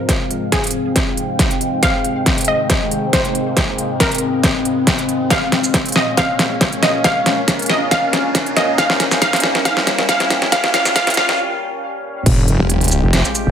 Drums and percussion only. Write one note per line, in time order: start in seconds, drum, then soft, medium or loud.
0.09 kick loud
0.09 snare medium
0.09 closed hi-hat medium
0.31 closed hi-hat medium
0.52 kick loud
0.52 snare medium
0.52 closed hi-hat medium
0.64 closed hi-hat soft
0.67 closed hi-hat medium
0.71 closed hi-hat medium
0.96 kick loud
0.96 snare medium
0.96 closed hi-hat medium
1.17 closed hi-hat medium
1.39 kick loud
1.39 snare medium
1.39 closed hi-hat medium
1.51 closed hi-hat soft
1.61 closed hi-hat medium
1.83 kick loud
1.83 snare medium
1.83 closed hi-hat medium
2.04 closed hi-hat medium
2.26 kick loud
2.26 snare medium
2.26 closed hi-hat medium
2.38 closed hi-hat soft
2.41 closed hi-hat medium
2.45 closed hi-hat medium
2.70 kick loud
2.70 snare medium
2.70 closed hi-hat medium
2.91 closed hi-hat medium
3.13 kick loud
3.13 snare medium
3.13 closed hi-hat medium
3.25 closed hi-hat soft
3.35 closed hi-hat medium
3.57 kick loud
3.57 snare medium
3.57 closed hi-hat medium
3.78 closed hi-hat medium
4.00 kick loud
4.00 snare medium
4.00 closed hi-hat medium
4.12 closed hi-hat soft
4.15 closed hi-hat medium
4.18 closed hi-hat medium
4.43 kick loud
4.43 snare medium
4.43 closed hi-hat medium
4.65 closed hi-hat medium
4.87 kick loud
4.87 snare medium
4.87 closed hi-hat medium
4.99 closed hi-hat soft
5.09 closed hi-hat medium
5.30 kick loud
5.30 snare medium
5.30 closed hi-hat medium
5.52 snare medium
5.52 closed hi-hat soft
5.64 shaker medium
5.74 kick loud
5.74 snare medium
5.74 closed hi-hat medium
5.86 closed hi-hat soft
5.88 closed hi-hat medium
5.92 snare medium
5.92 closed hi-hat medium
6.17 kick loud
6.17 snare medium
6.17 closed hi-hat medium
6.39 snare medium
6.39 closed hi-hat medium
6.61 kick loud
6.61 snare medium
6.61 closed hi-hat medium
6.72 closed hi-hat soft
6.83 snare medium
6.83 closed hi-hat soft
7.04 kick loud
7.04 snare medium
7.04 closed hi-hat medium
7.26 snare medium
7.26 closed hi-hat medium
7.48 kick loud
7.48 snare medium
7.48 closed hi-hat medium
7.59 closed hi-hat soft
7.62 closed hi-hat medium
7.66 snare medium
7.66 closed hi-hat medium
7.91 kick loud
7.91 snare medium
7.91 closed hi-hat medium
8.13 snare medium
8.13 closed hi-hat medium
8.35 kick loud
8.35 snare medium
8.35 closed hi-hat medium
8.46 closed hi-hat soft
8.57 snare medium
8.57 closed hi-hat soft
8.78 kick loud
8.78 snare medium
8.78 closed hi-hat medium
8.90 snare medium
9.00 snare medium
9.00 closed hi-hat medium
9.11 snare medium
9.11 shaker medium
9.22 kick loud
9.22 snare medium
9.22 closed hi-hat medium
9.33 snare medium
9.33 closed hi-hat soft
9.36 closed hi-hat medium
9.40 snare loud
9.40 closed hi-hat medium
9.55 snare medium
9.65 kick loud
9.65 snare loud
9.65 closed hi-hat medium
9.77 snare medium
9.87 snare loud
9.87 closed hi-hat medium
9.99 snare medium
10.09 kick loud
10.09 snare loud
10.09 closed hi-hat medium
10.20 snare medium
10.20 closed hi-hat soft
10.30 snare loud
10.30 closed hi-hat medium
10.42 snare medium
10.52 kick loud
10.52 snare loud
10.52 closed hi-hat medium
10.64 snare medium
10.74 snare loud
10.74 closed hi-hat medium
10.85 snare medium
10.85 shaker medium
10.96 kick loud
10.96 snare loud
10.96 closed hi-hat medium
11.07 snare medium
11.07 closed hi-hat soft
11.10 closed hi-hat medium
11.14 snare loud
11.14 closed hi-hat medium
11.29 snare medium
12.26 kick loud
12.26 closed hi-hat medium
12.26 crash loud
12.48 closed hi-hat medium
12.70 closed hi-hat medium
12.81 closed hi-hat medium
12.84 closed hi-hat medium
12.88 closed hi-hat medium
12.88 shaker medium
13.13 snare loud
13.13 closed hi-hat medium
13.25 shaker medium
13.35 closed hi-hat medium
13.35 shaker medium